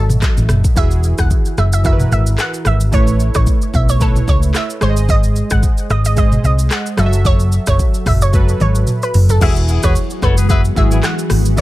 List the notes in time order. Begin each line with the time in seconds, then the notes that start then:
Already playing: G#1 F#3 F#4 A4 D#5 E5
0.09 mid tom, shaker
0.22 kick, cross-stick, clap, shaker
0.37 A1, shaker
0.49 F#1, cross-stick, mid tom, shaker
0.64 kick, shaker
0.75 E1 E3 E4 F#4 G#4 E5, kick, shaker
0.91 shaker
1.03 shaker
1.18 E1 F#5, kick, cross-stick, shaker
1.31 kick, shaker
1.45 shaker
1.58 F#1 E5, cross-stick, shaker
1.73 E5, shaker
1.83 E3 E4 F#4 A#4 E5, kick, shaker
1.92 B4
1.99 mid tom, shaker
2.12 G#1 E5, shaker
2.27 shaker
2.38 F#5, cross-stick, clap, shaker
2.54 shaker
2.65 G#1 E5, cross-stick, shaker
2.80 shaker
2.92 A1 A3 E4 B4 C#5, kick, shaker
3.07 shaker
3.20 shaker
3.34 A1 C#5, kick, cross-stick, shaker
3.47 kick, shaker
3.62 shaker
3.74 B1 E5, kick, shaker
3.89 C#5, shaker
4.00 A3 E4 A4 B4 C#5, kick, shaker
4.16 mid tom, shaker
4.28 C#2 C#5, kick, shaker
4.43 shaker
4.55 E5, cross-stick, clap, shaker
4.70 shaker
4.80 G#1 G#3 G#4 C5 C#5, cross-stick, shaker
4.90 D#5
4.97 shaker
5.09 D#5, kick, shaker
5.23 shaker
5.36 shaker
5.50 G#1 F#5, kick, cross-stick, shaker
5.63 kick, shaker
5.78 shaker
5.90 G#1 D#5, cross-stick, shaker
6.05 D#5, shaker
6.16 G#3 G#4 C5 D#5, kick, shaker
6.32 mid tom, shaker
6.44 C2 D#5, shaker
6.59 shaker
6.71 F#5, cross-stick, clap, shaker
6.86 shaker
6.97 F#1 F#3 F#4 A4 D#5 E5, cross-stick, shaker
7.06 E5
7.13 shaker
7.25 C#5, kick, shaker
7.40 shaker
7.52 shaker
7.67 F#1 C#5, kick, cross-stick, shaker
7.79 kick, shaker
7.94 shaker
8.06 F#1 E5, kick, cross-stick, mid tom, open hi-hat, shaker
8.22 C#5, shaker
8.32 F#3 F#4 A4 B4, kick, high tom, shaker
8.49 shaker
8.60 G#1 C#5, mid tom, shaker
8.75 shaker
8.87 mid tom, shaker
9.02 B4, shaker
9.14 F#1, floor tom, open hi-hat, shaker
9.29 A4, floor tom, shaker
9.40 E1 E3 F#3 G#3 B3 E4 F#4 G#4 E5, kick, crash, shaker
9.56 shaker
9.68 B3 E4 G#4, shaker
9.83 E1 F#4 G#4 B4 C#5, kick, cross-stick, shaker
9.96 shaker
10.10 shaker
10.22 F#1 F#4 A4 B4 C#5, kick, cross-stick, shaker
10.37 F#4 G#4 B4, shaker
10.49 F#4 G#4 B4 E5, kick, shaker
10.65 shaker
10.75 G#1 E3 E4 F#4 G#4 E5, kick, shaker
10.91 B3 E4 G#4, shaker
11.03 F#5, cross-stick, clap, shaker
11.19 shaker
11.30 G#1, cross-stick, open hi-hat, shaker
11.45 shaker
11.56 A1 A3 E4 B4, kick, shaker